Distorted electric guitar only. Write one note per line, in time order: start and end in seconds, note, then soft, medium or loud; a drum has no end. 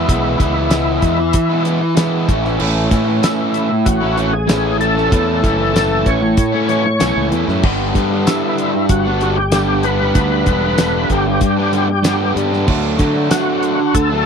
0.00 0.10 E4 medium
0.07 0.39 E3 loud
0.07 0.39 G#3 loud
0.07 0.40 B3 loud
0.07 0.42 E4 loud
0.39 0.69 E3 medium
0.39 0.57 G#3 medium
0.39 0.55 B3 medium
0.39 0.54 E4 loud
0.55 0.70 G#3 medium
0.55 0.71 B3 medium
0.55 0.73 E4 medium
0.70 1.64 E3 loud
0.70 1.18 G#3 loud
0.70 1.18 B3 loud
0.70 1.19 E4 loud
1.19 muted distorted electric guitar stroke medium
1.49 1.65 G#3 medium
1.49 1.66 B3 medium
1.49 1.68 E4 medium
1.65 1.96 E3 medium
1.65 1.81 G#3 medium
1.65 1.81 B3 medium
1.65 1.81 E4 medium
1.81 muted distorted electric guitar stroke medium
1.96 2.29 E3 medium
1.96 2.27 G#3 loud
1.96 2.28 B3 loud
1.96 2.30 E4 loud
2.28 2.58 A2 medium
2.28 2.59 E3 loud
2.28 2.46 A3 loud
2.28 2.45 C#4 loud
2.28 2.43 E4 loud
2.43 2.60 A3 medium
2.43 2.61 C#4 medium
2.43 2.61 E4 medium
2.58 3.21 A2 medium
2.58 2.89 E3 loud
2.58 2.91 A3 loud
2.58 2.92 C#4 loud
2.58 2.93 E4 loud
2.90 3.22 E3 medium
2.90 3.09 A3 medium
2.90 3.07 C#4 medium
2.90 3.05 E4 medium
3.06 3.23 A3 medium
3.06 3.24 C#4 medium
3.06 3.24 E4 medium
3.21 4.01 A2 medium
3.21 3.69 E3 loud
3.21 3.69 A3 loud
3.21 3.69 C#4 loud
3.21 3.68 E4 loud
3.70 muted distorted electric guitar stroke medium
4.01 4.17 A3 medium
4.01 4.18 C#4 medium
4.01 4.19 E4 medium
4.17 4.32 E3 medium
4.17 4.32 A3 medium
4.17 4.32 C#4 medium
4.17 4.31 E4 medium
4.33 muted distorted electric guitar stroke medium
4.47 5.09 A2 loud
4.47 4.78 E3 loud
4.47 4.79 A3 loud
4.47 4.80 C#4 loud
4.47 4.81 E4 loud
4.79 5.10 E3 medium
4.79 4.97 A3 medium
4.79 4.95 C#4 medium
4.79 4.93 E4 medium
4.95 5.11 A3 medium
4.95 5.12 C#4 medium
4.95 5.13 E4 medium
5.11 5.72 A2 loud
5.11 5.41 E3 loud
5.11 5.42 A3 medium
5.11 5.43 C#4 loud
5.11 5.44 E4 loud
5.42 5.73 E3 medium
5.42 5.60 A3 medium
5.42 5.59 C#4 medium
5.42 5.57 E4 medium
5.58 5.73 A3 medium
5.58 5.74 C#4 medium
5.58 5.75 E4 medium
5.73 6.53 A2 loud
5.73 6.21 E3 loud
5.73 6.21 A3 loud
5.73 6.21 C#4 loud
5.73 6.21 E4 loud
6.22 muted distorted electric guitar stroke medium
6.52 6.68 A3 medium
6.52 6.69 C#4 medium
6.52 6.70 E4 medium
6.68 6.85 E3 medium
6.68 6.85 A3 medium
6.68 6.84 C#4 medium
6.68 6.84 E4 medium
6.85 muted distorted electric guitar stroke soft
7.00 7.61 A2 medium
7.00 7.30 E3 loud
7.00 7.31 A3 medium
7.00 7.32 C#4 loud
7.00 7.34 E4 loud
7.31 7.61 E3 medium
7.31 7.50 A3 medium
7.31 7.48 C#4 medium
7.31 7.46 E4 medium
7.47 7.63 A3 medium
7.47 7.63 C#4 medium
7.47 7.62 E4 medium
7.63 8.25 G2 medium
7.63 7.93 D3 loud
7.63 7.95 G3 loud
7.63 7.96 B3 loud
7.63 7.97 D4 loud
7.94 8.25 D3 medium
7.94 8.13 G3 medium
7.94 8.11 B3 medium
7.94 8.09 D4 medium
8.10 8.27 G3 medium
8.10 8.28 B3 medium
8.10 8.29 D4 medium
8.26 9.05 G2 loud
8.26 8.74 D3 medium
8.26 8.74 G3 loud
8.26 8.74 B3 loud
8.26 8.74 D4 loud
8.74 muted distorted electric guitar stroke medium
9.05 9.21 G3 medium
9.05 9.22 B3 medium
9.05 9.24 D4 medium
9.21 9.37 D3 medium
9.21 9.36 G3 medium
9.21 9.36 B3 medium
9.21 9.36 D4 medium
9.37 muted distorted electric guitar stroke medium
9.51 10.13 G2 medium
9.51 9.82 D3 medium
9.51 9.84 G3 loud
9.51 9.85 B3 loud
9.51 9.86 D4 loud
9.83 10.14 D3 medium
9.83 10.01 G3 medium
9.83 10.00 B3 medium
9.83 9.98 D4 medium
9.99 10.15 G3 medium
9.99 10.16 B3 medium
9.99 10.18 D4 medium
10.14 10.76 G2 medium
10.14 10.44 D3 loud
10.14 10.46 G3 loud
10.14 10.47 B3 loud
10.14 10.48 D4 loud
10.45 10.77 D3 medium
10.45 10.65 G3 medium
10.45 10.63 B3 medium
10.45 10.62 D4 loud
10.62 10.78 G3 medium
10.62 10.79 B3 medium
10.62 10.80 D4 medium
10.78 11.57 G2 loud
10.78 11.26 D3 loud
10.78 11.25 G3 loud
10.78 11.25 B3 loud
10.78 11.25 D4 loud
11.26 muted distorted electric guitar stroke medium
11.57 11.72 G3 medium
11.57 11.74 B3 medium
11.57 11.75 D4 medium
11.72 11.88 D3 medium
11.72 11.88 G3 medium
11.72 11.88 B3 loud
11.72 11.87 D4 medium
11.89 muted distorted electric guitar stroke medium
12.03 12.65 G2 medium
12.03 12.34 D3 loud
12.03 12.35 G3 medium
12.03 12.36 B3 loud
12.03 12.37 D4 loud
12.35 12.65 D3 medium
12.35 12.53 G3 medium
12.35 12.51 B3 medium
12.35 12.50 D4 medium
12.51 12.67 G3 medium
12.51 12.66 B3 medium
12.51 12.66 D4 medium
12.66 12.97 D3 loud
12.66 12.98 F#3 loud
12.66 12.99 A3 loud
12.66 13.00 D4 loud
12.98 13.29 D3 medium
12.98 13.17 F#3 medium
12.98 13.15 A3 medium
12.98 13.13 D4 medium
13.14 13.30 F#3 medium
13.14 13.31 A3 medium
13.14 13.32 D4 medium
13.30 14.09 D3 loud
13.30 13.79 F#3 loud
13.30 13.78 A3 medium
13.30 13.78 D4 loud
13.79 muted distorted electric guitar stroke medium
14.09 14.26 F#3 medium
14.09 14.26 A3 medium
14.09 14.26 D4 medium